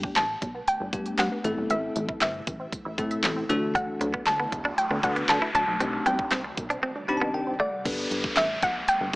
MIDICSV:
0, 0, Header, 1, 11, 480
1, 0, Start_track
1, 0, Key_signature, 1, "major"
1, 0, Tempo, 512821
1, 1592, Time_signature, 4, 2, 24, 8
1, 8570, End_track
2, 0, Start_track
2, 0, Title_t, "Synth pluck"
2, 0, Program_c, 0, 84
2, 0, Note_on_c, 0, 79, 100
2, 151, Note_on_c, 0, 81, 106
2, 166, Note_off_c, 0, 79, 0
2, 636, Note_on_c, 0, 79, 102
2, 646, Note_off_c, 0, 81, 0
2, 1114, Note_on_c, 0, 78, 87
2, 1128, Note_off_c, 0, 79, 0
2, 1560, Note_off_c, 0, 78, 0
2, 1596, Note_on_c, 0, 76, 91
2, 2040, Note_off_c, 0, 76, 0
2, 2076, Note_on_c, 0, 76, 78
2, 2757, Note_off_c, 0, 76, 0
2, 3509, Note_on_c, 0, 78, 103
2, 3992, Note_on_c, 0, 81, 110
2, 4005, Note_off_c, 0, 78, 0
2, 4474, Note_on_c, 0, 79, 105
2, 4487, Note_off_c, 0, 81, 0
2, 4715, Note_on_c, 0, 78, 93
2, 4720, Note_off_c, 0, 79, 0
2, 4955, Note_on_c, 0, 81, 100
2, 4961, Note_off_c, 0, 78, 0
2, 5185, Note_off_c, 0, 81, 0
2, 5196, Note_on_c, 0, 81, 100
2, 5641, Note_off_c, 0, 81, 0
2, 5674, Note_on_c, 0, 79, 91
2, 7076, Note_off_c, 0, 79, 0
2, 7113, Note_on_c, 0, 74, 97
2, 7835, Note_on_c, 0, 76, 107
2, 7854, Note_off_c, 0, 74, 0
2, 8078, Note_on_c, 0, 78, 108
2, 8081, Note_off_c, 0, 76, 0
2, 8298, Note_off_c, 0, 78, 0
2, 8316, Note_on_c, 0, 79, 110
2, 8570, Note_off_c, 0, 79, 0
2, 8570, End_track
3, 0, Start_track
3, 0, Title_t, "Tine electric piano"
3, 0, Program_c, 1, 4
3, 0, Note_on_c, 1, 57, 69
3, 0, Note_on_c, 1, 59, 63
3, 0, Note_on_c, 1, 62, 66
3, 0, Note_on_c, 1, 67, 79
3, 222, Note_off_c, 1, 57, 0
3, 222, Note_off_c, 1, 59, 0
3, 223, Note_off_c, 1, 62, 0
3, 224, Note_off_c, 1, 67, 0
3, 870, Note_on_c, 1, 57, 68
3, 871, Note_on_c, 1, 59, 68
3, 873, Note_on_c, 1, 62, 65
3, 874, Note_on_c, 1, 67, 78
3, 1284, Note_off_c, 1, 57, 0
3, 1285, Note_off_c, 1, 59, 0
3, 1286, Note_off_c, 1, 62, 0
3, 1287, Note_off_c, 1, 67, 0
3, 1350, Note_on_c, 1, 57, 76
3, 1351, Note_on_c, 1, 60, 69
3, 1352, Note_on_c, 1, 64, 73
3, 1354, Note_on_c, 1, 69, 88
3, 2119, Note_off_c, 1, 57, 0
3, 2120, Note_off_c, 1, 60, 0
3, 2120, Note_off_c, 1, 64, 0
3, 2121, Note_off_c, 1, 69, 0
3, 2790, Note_on_c, 1, 57, 85
3, 2791, Note_on_c, 1, 60, 78
3, 2793, Note_on_c, 1, 64, 76
3, 2795, Note_on_c, 1, 69, 96
3, 3204, Note_off_c, 1, 57, 0
3, 3205, Note_off_c, 1, 60, 0
3, 3206, Note_off_c, 1, 64, 0
3, 3207, Note_off_c, 1, 69, 0
3, 3269, Note_on_c, 1, 57, 90
3, 3270, Note_on_c, 1, 62, 85
3, 3272, Note_on_c, 1, 66, 84
3, 3273, Note_on_c, 1, 69, 103
3, 4039, Note_off_c, 1, 57, 0
3, 4039, Note_off_c, 1, 62, 0
3, 4040, Note_off_c, 1, 66, 0
3, 4041, Note_off_c, 1, 69, 0
3, 4711, Note_on_c, 1, 57, 75
3, 4712, Note_on_c, 1, 62, 68
3, 4714, Note_on_c, 1, 66, 68
3, 4715, Note_on_c, 1, 71, 80
3, 5125, Note_off_c, 1, 57, 0
3, 5126, Note_off_c, 1, 62, 0
3, 5127, Note_off_c, 1, 66, 0
3, 5127, Note_off_c, 1, 71, 0
3, 5429, Note_on_c, 1, 60, 77
3, 5430, Note_on_c, 1, 62, 68
3, 5433, Note_on_c, 1, 63, 67
3, 5434, Note_on_c, 1, 67, 83
3, 5982, Note_off_c, 1, 60, 0
3, 5982, Note_off_c, 1, 62, 0
3, 5984, Note_off_c, 1, 63, 0
3, 5984, Note_off_c, 1, 67, 0
3, 6630, Note_on_c, 1, 60, 87
3, 6632, Note_on_c, 1, 62, 83
3, 6632, Note_on_c, 1, 83, 71
3, 6633, Note_on_c, 1, 63, 77
3, 6635, Note_on_c, 1, 67, 98
3, 6706, Note_off_c, 1, 83, 0
3, 6713, Note_on_c, 1, 81, 73
3, 6861, Note_off_c, 1, 81, 0
3, 6872, Note_on_c, 1, 79, 74
3, 7045, Note_off_c, 1, 60, 0
3, 7045, Note_off_c, 1, 62, 0
3, 7046, Note_off_c, 1, 63, 0
3, 7047, Note_off_c, 1, 67, 0
3, 7096, Note_off_c, 1, 79, 0
3, 7111, Note_on_c, 1, 78, 70
3, 7335, Note_off_c, 1, 78, 0
3, 7348, Note_on_c, 1, 59, 76
3, 7350, Note_on_c, 1, 62, 70
3, 7351, Note_on_c, 1, 67, 71
3, 7353, Note_on_c, 1, 69, 72
3, 7354, Note_on_c, 1, 71, 85
3, 7902, Note_off_c, 1, 59, 0
3, 7902, Note_off_c, 1, 62, 0
3, 7903, Note_off_c, 1, 67, 0
3, 7904, Note_off_c, 1, 69, 0
3, 7904, Note_off_c, 1, 71, 0
3, 8570, End_track
4, 0, Start_track
4, 0, Title_t, "Clean electric guitar"
4, 0, Program_c, 2, 27
4, 3512, Note_on_c, 2, 62, 77
4, 3584, Note_off_c, 2, 62, 0
4, 3873, Note_on_c, 2, 59, 89
4, 3944, Note_off_c, 2, 59, 0
4, 4114, Note_on_c, 2, 59, 74
4, 4185, Note_off_c, 2, 59, 0
4, 4353, Note_on_c, 2, 62, 79
4, 4424, Note_off_c, 2, 62, 0
4, 4593, Note_on_c, 2, 59, 73
4, 4664, Note_off_c, 2, 59, 0
4, 4833, Note_on_c, 2, 59, 72
4, 4904, Note_off_c, 2, 59, 0
4, 5072, Note_on_c, 2, 64, 85
4, 5144, Note_off_c, 2, 64, 0
4, 5193, Note_on_c, 2, 62, 78
4, 5264, Note_off_c, 2, 62, 0
4, 5433, Note_on_c, 2, 60, 89
4, 5504, Note_off_c, 2, 60, 0
4, 5671, Note_on_c, 2, 59, 82
4, 5743, Note_off_c, 2, 59, 0
4, 5911, Note_on_c, 2, 60, 89
4, 5983, Note_off_c, 2, 60, 0
4, 6272, Note_on_c, 2, 62, 74
4, 6344, Note_off_c, 2, 62, 0
4, 6392, Note_on_c, 2, 60, 90
4, 6464, Note_off_c, 2, 60, 0
4, 6753, Note_on_c, 2, 59, 81
4, 6824, Note_off_c, 2, 59, 0
4, 7111, Note_on_c, 2, 57, 90
4, 7183, Note_off_c, 2, 57, 0
4, 8570, End_track
5, 0, Start_track
5, 0, Title_t, "Synth arpeggio sound"
5, 0, Program_c, 3, 84
5, 30, Note_on_c, 3, 62, 82
5, 97, Note_off_c, 3, 62, 0
5, 149, Note_on_c, 3, 59, 81
5, 217, Note_off_c, 3, 59, 0
5, 391, Note_on_c, 3, 55, 80
5, 458, Note_off_c, 3, 55, 0
5, 510, Note_on_c, 3, 59, 70
5, 578, Note_off_c, 3, 59, 0
5, 749, Note_on_c, 3, 62, 75
5, 816, Note_off_c, 3, 62, 0
5, 871, Note_on_c, 3, 59, 83
5, 938, Note_off_c, 3, 59, 0
5, 991, Note_on_c, 3, 67, 80
5, 1058, Note_off_c, 3, 67, 0
5, 1112, Note_on_c, 3, 55, 85
5, 1179, Note_off_c, 3, 55, 0
5, 1233, Note_on_c, 3, 59, 75
5, 1299, Note_off_c, 3, 59, 0
5, 1352, Note_on_c, 3, 57, 82
5, 1419, Note_off_c, 3, 57, 0
5, 1593, Note_on_c, 3, 52, 89
5, 1659, Note_off_c, 3, 52, 0
5, 1831, Note_on_c, 3, 57, 79
5, 1898, Note_off_c, 3, 57, 0
5, 1951, Note_on_c, 3, 64, 82
5, 2018, Note_off_c, 3, 64, 0
5, 2071, Note_on_c, 3, 60, 83
5, 2138, Note_off_c, 3, 60, 0
5, 2312, Note_on_c, 3, 52, 78
5, 2379, Note_off_c, 3, 52, 0
5, 2430, Note_on_c, 3, 60, 73
5, 2498, Note_off_c, 3, 60, 0
5, 2670, Note_on_c, 3, 64, 80
5, 2737, Note_off_c, 3, 64, 0
5, 2791, Note_on_c, 3, 60, 81
5, 2858, Note_off_c, 3, 60, 0
5, 2910, Note_on_c, 3, 76, 80
5, 2978, Note_off_c, 3, 76, 0
5, 3031, Note_on_c, 3, 52, 84
5, 3098, Note_off_c, 3, 52, 0
5, 3150, Note_on_c, 3, 60, 81
5, 3217, Note_off_c, 3, 60, 0
5, 3271, Note_on_c, 3, 54, 83
5, 3338, Note_off_c, 3, 54, 0
5, 3510, Note_on_c, 3, 50, 93
5, 3577, Note_off_c, 3, 50, 0
5, 3751, Note_on_c, 3, 54, 83
5, 3818, Note_off_c, 3, 54, 0
5, 3872, Note_on_c, 3, 62, 80
5, 3938, Note_off_c, 3, 62, 0
5, 3989, Note_on_c, 3, 57, 85
5, 4057, Note_off_c, 3, 57, 0
5, 4230, Note_on_c, 3, 50, 79
5, 4297, Note_off_c, 3, 50, 0
5, 4350, Note_on_c, 3, 57, 76
5, 4417, Note_off_c, 3, 57, 0
5, 4589, Note_on_c, 3, 62, 79
5, 4657, Note_off_c, 3, 62, 0
5, 4710, Note_on_c, 3, 57, 81
5, 4777, Note_off_c, 3, 57, 0
5, 4831, Note_on_c, 3, 74, 81
5, 4898, Note_off_c, 3, 74, 0
5, 4951, Note_on_c, 3, 50, 81
5, 5018, Note_off_c, 3, 50, 0
5, 5071, Note_on_c, 3, 57, 78
5, 5138, Note_off_c, 3, 57, 0
5, 5190, Note_on_c, 3, 54, 80
5, 5258, Note_off_c, 3, 54, 0
5, 5431, Note_on_c, 3, 51, 92
5, 5498, Note_off_c, 3, 51, 0
5, 5671, Note_on_c, 3, 55, 82
5, 5738, Note_off_c, 3, 55, 0
5, 5791, Note_on_c, 3, 62, 76
5, 5858, Note_off_c, 3, 62, 0
5, 5910, Note_on_c, 3, 60, 86
5, 5978, Note_off_c, 3, 60, 0
5, 6150, Note_on_c, 3, 51, 78
5, 6218, Note_off_c, 3, 51, 0
5, 6270, Note_on_c, 3, 60, 79
5, 6337, Note_off_c, 3, 60, 0
5, 6509, Note_on_c, 3, 62, 81
5, 6577, Note_off_c, 3, 62, 0
5, 6630, Note_on_c, 3, 60, 84
5, 6697, Note_off_c, 3, 60, 0
5, 6749, Note_on_c, 3, 63, 81
5, 6817, Note_off_c, 3, 63, 0
5, 6869, Note_on_c, 3, 51, 85
5, 6937, Note_off_c, 3, 51, 0
5, 6990, Note_on_c, 3, 60, 78
5, 7058, Note_off_c, 3, 60, 0
5, 7111, Note_on_c, 3, 55, 82
5, 7178, Note_off_c, 3, 55, 0
5, 8570, End_track
6, 0, Start_track
6, 0, Title_t, "Ambient pad"
6, 0, Program_c, 4, 92
6, 0, Note_on_c, 4, 50, 72
6, 0, Note_on_c, 4, 57, 69
6, 0, Note_on_c, 4, 59, 69
6, 0, Note_on_c, 4, 67, 82
6, 1335, Note_off_c, 4, 50, 0
6, 1335, Note_off_c, 4, 59, 0
6, 1335, Note_off_c, 4, 67, 0
6, 1352, Note_on_c, 4, 48, 79
6, 1352, Note_on_c, 4, 52, 70
6, 1352, Note_on_c, 4, 64, 85
6, 3236, Note_off_c, 4, 57, 0
6, 3253, Note_off_c, 4, 48, 0
6, 3253, Note_off_c, 4, 52, 0
6, 3253, Note_off_c, 4, 64, 0
6, 3272, Note_on_c, 4, 50, 78
6, 3272, Note_on_c, 4, 54, 73
6, 3272, Note_on_c, 4, 57, 72
6, 3272, Note_on_c, 4, 66, 89
6, 5410, Note_off_c, 4, 50, 0
6, 5410, Note_off_c, 4, 54, 0
6, 5410, Note_off_c, 4, 57, 0
6, 5411, Note_off_c, 4, 66, 0
6, 5431, Note_on_c, 4, 74, 81
6, 5432, Note_on_c, 4, 48, 76
6, 5432, Note_on_c, 4, 51, 69
6, 5432, Note_on_c, 4, 55, 73
6, 7332, Note_off_c, 4, 74, 0
6, 7333, Note_off_c, 4, 48, 0
6, 7333, Note_off_c, 4, 51, 0
6, 7333, Note_off_c, 4, 55, 0
6, 7351, Note_on_c, 4, 50, 79
6, 7351, Note_on_c, 4, 57, 70
6, 7351, Note_on_c, 4, 59, 72
6, 7351, Note_on_c, 4, 67, 87
6, 8570, Note_off_c, 4, 50, 0
6, 8570, Note_off_c, 4, 57, 0
6, 8570, Note_off_c, 4, 59, 0
6, 8570, Note_off_c, 4, 67, 0
6, 8570, End_track
7, 0, Start_track
7, 0, Title_t, "Analog synth bass"
7, 0, Program_c, 5, 38
7, 0, Note_on_c, 5, 31, 99
7, 97, Note_off_c, 5, 31, 0
7, 152, Note_on_c, 5, 33, 90
7, 338, Note_off_c, 5, 33, 0
7, 393, Note_on_c, 5, 35, 91
7, 578, Note_off_c, 5, 35, 0
7, 754, Note_on_c, 5, 31, 94
7, 846, Note_off_c, 5, 31, 0
7, 869, Note_on_c, 5, 43, 93
7, 1056, Note_off_c, 5, 43, 0
7, 1114, Note_on_c, 5, 43, 100
7, 1206, Note_off_c, 5, 43, 0
7, 1353, Note_on_c, 5, 33, 100
7, 1445, Note_off_c, 5, 33, 0
7, 1473, Note_on_c, 5, 31, 85
7, 1565, Note_off_c, 5, 31, 0
7, 1593, Note_on_c, 5, 33, 100
7, 1778, Note_off_c, 5, 33, 0
7, 1832, Note_on_c, 5, 33, 103
7, 2017, Note_off_c, 5, 33, 0
7, 2072, Note_on_c, 5, 31, 94
7, 2257, Note_off_c, 5, 31, 0
7, 2314, Note_on_c, 5, 33, 85
7, 2499, Note_off_c, 5, 33, 0
7, 2672, Note_on_c, 5, 33, 100
7, 2765, Note_off_c, 5, 33, 0
7, 2790, Note_on_c, 5, 45, 103
7, 2976, Note_off_c, 5, 45, 0
7, 3032, Note_on_c, 5, 33, 98
7, 3217, Note_off_c, 5, 33, 0
7, 3272, Note_on_c, 5, 38, 93
7, 3643, Note_off_c, 5, 38, 0
7, 3751, Note_on_c, 5, 38, 98
7, 3937, Note_off_c, 5, 38, 0
7, 3991, Note_on_c, 5, 38, 92
7, 4177, Note_off_c, 5, 38, 0
7, 4234, Note_on_c, 5, 40, 87
7, 4419, Note_off_c, 5, 40, 0
7, 4590, Note_on_c, 5, 38, 99
7, 4684, Note_off_c, 5, 38, 0
7, 4710, Note_on_c, 5, 50, 107
7, 4896, Note_off_c, 5, 50, 0
7, 4951, Note_on_c, 5, 50, 109
7, 5044, Note_off_c, 5, 50, 0
7, 5191, Note_on_c, 5, 38, 101
7, 5284, Note_off_c, 5, 38, 0
7, 5311, Note_on_c, 5, 35, 97
7, 5404, Note_off_c, 5, 35, 0
7, 5431, Note_on_c, 5, 36, 106
7, 5617, Note_off_c, 5, 36, 0
7, 5671, Note_on_c, 5, 36, 98
7, 5857, Note_off_c, 5, 36, 0
7, 5910, Note_on_c, 5, 36, 95
7, 6096, Note_off_c, 5, 36, 0
7, 6154, Note_on_c, 5, 35, 90
7, 6339, Note_off_c, 5, 35, 0
7, 7352, Note_on_c, 5, 31, 109
7, 7538, Note_off_c, 5, 31, 0
7, 7591, Note_on_c, 5, 31, 101
7, 7777, Note_off_c, 5, 31, 0
7, 7830, Note_on_c, 5, 33, 88
7, 8016, Note_off_c, 5, 33, 0
7, 8074, Note_on_c, 5, 35, 89
7, 8259, Note_off_c, 5, 35, 0
7, 8430, Note_on_c, 5, 31, 94
7, 8524, Note_off_c, 5, 31, 0
7, 8570, End_track
8, 0, Start_track
8, 0, Title_t, "Downlifter"
8, 0, Program_c, 6, 103
8, 7351, Note_on_c, 6, 60, 88
8, 8570, Note_off_c, 6, 60, 0
8, 8570, End_track
9, 0, Start_track
9, 0, Title_t, "Noise sweep"
9, 0, Program_c, 7, 103
9, 3511, Note_on_c, 7, 60, 85
9, 6392, Note_off_c, 7, 60, 0
9, 8570, End_track
10, 0, Start_track
10, 0, Title_t, "Muted clean electric guitar strokes"
10, 3753, Note_on_c, 9, 29, 46
10, 3847, Note_off_c, 9, 29, 0
10, 4234, Note_on_c, 9, 29, 44
10, 4327, Note_off_c, 9, 29, 0
10, 4713, Note_on_c, 9, 29, 47
10, 4807, Note_off_c, 9, 29, 0
10, 4954, Note_on_c, 9, 29, 47
10, 5047, Note_off_c, 9, 29, 0
10, 5553, Note_on_c, 9, 29, 45
10, 5647, Note_off_c, 9, 29, 0
10, 6032, Note_on_c, 9, 29, 47
10, 6125, Note_off_c, 9, 29, 0
10, 6632, Note_on_c, 9, 29, 45
10, 6726, Note_off_c, 9, 29, 0
10, 8570, End_track
11, 0, Start_track
11, 0, Title_t, "Drums"
11, 32, Note_on_c, 9, 36, 94
11, 126, Note_off_c, 9, 36, 0
11, 146, Note_on_c, 9, 38, 91
11, 150, Note_on_c, 9, 42, 86
11, 152, Note_on_c, 9, 39, 114
11, 240, Note_off_c, 9, 38, 0
11, 244, Note_off_c, 9, 42, 0
11, 246, Note_off_c, 9, 39, 0
11, 392, Note_on_c, 9, 42, 79
11, 393, Note_on_c, 9, 36, 91
11, 486, Note_off_c, 9, 42, 0
11, 487, Note_off_c, 9, 36, 0
11, 633, Note_on_c, 9, 42, 96
11, 726, Note_off_c, 9, 42, 0
11, 869, Note_on_c, 9, 36, 92
11, 873, Note_on_c, 9, 42, 77
11, 963, Note_off_c, 9, 36, 0
11, 966, Note_off_c, 9, 42, 0
11, 989, Note_on_c, 9, 42, 56
11, 1083, Note_off_c, 9, 42, 0
11, 1105, Note_on_c, 9, 38, 87
11, 1111, Note_on_c, 9, 39, 105
11, 1112, Note_on_c, 9, 42, 90
11, 1199, Note_off_c, 9, 38, 0
11, 1205, Note_off_c, 9, 39, 0
11, 1206, Note_off_c, 9, 42, 0
11, 1352, Note_on_c, 9, 42, 76
11, 1445, Note_off_c, 9, 42, 0
11, 1591, Note_on_c, 9, 42, 92
11, 1685, Note_off_c, 9, 42, 0
11, 1832, Note_on_c, 9, 42, 74
11, 1926, Note_off_c, 9, 42, 0
11, 1953, Note_on_c, 9, 36, 98
11, 2046, Note_off_c, 9, 36, 0
11, 2067, Note_on_c, 9, 38, 86
11, 2071, Note_on_c, 9, 42, 86
11, 2073, Note_on_c, 9, 39, 117
11, 2160, Note_off_c, 9, 38, 0
11, 2164, Note_off_c, 9, 42, 0
11, 2167, Note_off_c, 9, 39, 0
11, 2313, Note_on_c, 9, 42, 82
11, 2314, Note_on_c, 9, 36, 93
11, 2407, Note_off_c, 9, 36, 0
11, 2407, Note_off_c, 9, 42, 0
11, 2550, Note_on_c, 9, 36, 94
11, 2554, Note_on_c, 9, 42, 100
11, 2644, Note_off_c, 9, 36, 0
11, 2647, Note_off_c, 9, 42, 0
11, 2790, Note_on_c, 9, 36, 95
11, 2793, Note_on_c, 9, 42, 76
11, 2884, Note_off_c, 9, 36, 0
11, 2887, Note_off_c, 9, 42, 0
11, 2910, Note_on_c, 9, 42, 55
11, 3003, Note_off_c, 9, 42, 0
11, 3025, Note_on_c, 9, 38, 87
11, 3031, Note_on_c, 9, 39, 114
11, 3032, Note_on_c, 9, 42, 91
11, 3118, Note_off_c, 9, 38, 0
11, 3125, Note_off_c, 9, 39, 0
11, 3126, Note_off_c, 9, 42, 0
11, 3272, Note_on_c, 9, 42, 78
11, 3366, Note_off_c, 9, 42, 0
11, 3512, Note_on_c, 9, 36, 102
11, 3512, Note_on_c, 9, 42, 96
11, 3606, Note_off_c, 9, 36, 0
11, 3606, Note_off_c, 9, 42, 0
11, 3752, Note_on_c, 9, 42, 78
11, 3845, Note_off_c, 9, 42, 0
11, 3873, Note_on_c, 9, 36, 95
11, 3967, Note_off_c, 9, 36, 0
11, 3987, Note_on_c, 9, 38, 93
11, 3991, Note_on_c, 9, 42, 85
11, 3994, Note_on_c, 9, 39, 113
11, 4081, Note_off_c, 9, 38, 0
11, 4085, Note_off_c, 9, 42, 0
11, 4087, Note_off_c, 9, 39, 0
11, 4234, Note_on_c, 9, 36, 92
11, 4234, Note_on_c, 9, 42, 81
11, 4327, Note_off_c, 9, 42, 0
11, 4328, Note_off_c, 9, 36, 0
11, 4474, Note_on_c, 9, 42, 102
11, 4567, Note_off_c, 9, 42, 0
11, 4710, Note_on_c, 9, 36, 94
11, 4714, Note_on_c, 9, 42, 76
11, 4804, Note_off_c, 9, 36, 0
11, 4807, Note_off_c, 9, 42, 0
11, 4831, Note_on_c, 9, 42, 56
11, 4924, Note_off_c, 9, 42, 0
11, 4946, Note_on_c, 9, 38, 90
11, 4952, Note_on_c, 9, 39, 113
11, 4953, Note_on_c, 9, 42, 93
11, 5040, Note_off_c, 9, 38, 0
11, 5046, Note_off_c, 9, 39, 0
11, 5047, Note_off_c, 9, 42, 0
11, 5193, Note_on_c, 9, 42, 78
11, 5287, Note_off_c, 9, 42, 0
11, 5433, Note_on_c, 9, 42, 95
11, 5527, Note_off_c, 9, 42, 0
11, 5672, Note_on_c, 9, 42, 71
11, 5766, Note_off_c, 9, 42, 0
11, 5793, Note_on_c, 9, 36, 92
11, 5887, Note_off_c, 9, 36, 0
11, 5907, Note_on_c, 9, 38, 90
11, 5911, Note_on_c, 9, 42, 87
11, 5913, Note_on_c, 9, 39, 114
11, 6000, Note_off_c, 9, 38, 0
11, 6004, Note_off_c, 9, 42, 0
11, 6006, Note_off_c, 9, 39, 0
11, 6153, Note_on_c, 9, 42, 82
11, 6154, Note_on_c, 9, 36, 92
11, 6247, Note_off_c, 9, 42, 0
11, 6248, Note_off_c, 9, 36, 0
11, 6275, Note_on_c, 9, 42, 52
11, 6368, Note_off_c, 9, 42, 0
11, 7352, Note_on_c, 9, 36, 110
11, 7352, Note_on_c, 9, 42, 98
11, 7352, Note_on_c, 9, 49, 100
11, 7446, Note_off_c, 9, 36, 0
11, 7446, Note_off_c, 9, 42, 0
11, 7446, Note_off_c, 9, 49, 0
11, 7593, Note_on_c, 9, 42, 77
11, 7686, Note_off_c, 9, 42, 0
11, 7713, Note_on_c, 9, 36, 93
11, 7806, Note_off_c, 9, 36, 0
11, 7826, Note_on_c, 9, 38, 98
11, 7830, Note_on_c, 9, 42, 89
11, 7832, Note_on_c, 9, 39, 118
11, 7920, Note_off_c, 9, 38, 0
11, 7924, Note_off_c, 9, 42, 0
11, 7926, Note_off_c, 9, 39, 0
11, 8073, Note_on_c, 9, 42, 82
11, 8074, Note_on_c, 9, 36, 93
11, 8166, Note_off_c, 9, 42, 0
11, 8167, Note_off_c, 9, 36, 0
11, 8313, Note_on_c, 9, 42, 106
11, 8406, Note_off_c, 9, 42, 0
11, 8570, End_track
0, 0, End_of_file